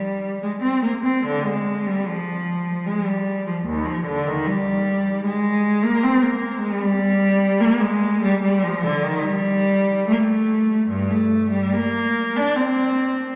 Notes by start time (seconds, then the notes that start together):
Already playing: G3
0.43 G#3
0.62 C4
0.83 A#3
1.03 C4
1.26 D3
1.46 G#3
1.87 G3
2.07 F3
2.86 G#3
3.05 G3
3.47 F3
3.65 D#2
3.86 F3
4.06 D3
4.27 D#3
4.46 G3
5.25 G#3
5.84 A#3
6.03 C4
6.22 A#3
6.62 G#3
6.81 G3
7.61 A#3
7.81 G#3
8.22 G3
8.42 G3
8.63 F3
8.84 D3
9.03 D#3
9.25 G3
10.07 A3
10.12 A#3
10.19 A3
10.89 G2
11.10 A3
11.51 G3
11.73 A#3
12.36 D4
12.56 C4